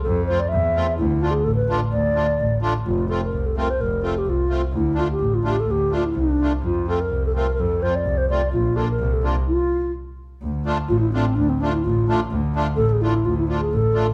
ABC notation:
X:1
M:2/4
L:1/16
Q:1/4=127
K:none
V:1 name="Alto flute"
A2 c d e4 | E2 F ^G A B2 z | d6 z2 | F2 A _B2 A B c |
_B2 A G F3 z | E2 F G2 F G A | G2 F E D3 z | F2 A _B2 A B3/2 B/2 |
A2 c d2 c d2 | F2 A _B2 A z2 | F4 z4 | z4 F E C2 |
D C D E F3 z | z4 A ^G E2 | F E F ^G A3 z |]
V:2 name="Accordion"
z2 [A,CF] z3 [A,CF] z | z2 [A,DF] z3 [A,DF] z | z2 [A,DF] z3 [A,DF] z | z2 [A,CF] z3 [A,CF] z |
z2 [A,CF] z3 [A,CF] z | z2 [A,DF] z3 [A,DF] z | z2 [A,DF] z3 [A,DF] z | z2 [A,CF] z3 [A,CF] z |
z2 [A,CF] z3 [A,CF] z | z2 [_B,DF] z3 [B,DF] z | z8 | z2 [A,DF] z3 [A,DF] z |
z2 [A,DF] z3 [A,DF] z | z2 [A,DF] z3 [A,DF] z | z2 [A,DF] z3 [A,DF] z |]
V:3 name="Double bass" clef=bass
F,,4 E,,4 | D,,4 A,,,4 | D,,4 A,,,4 | F,,,4 C,,4 |
F,,,4 C,,4 | D,,4 A,,,4 | D,,4 C,,4 | F,,4 C,,4 |
F,,4 C,,4 | _B,,,4 C,,4 | z8 | D,,4 A,,,4 |
D,,4 A,,,4 | D,,4 A,,,4 | D,,4 A,,,4 |]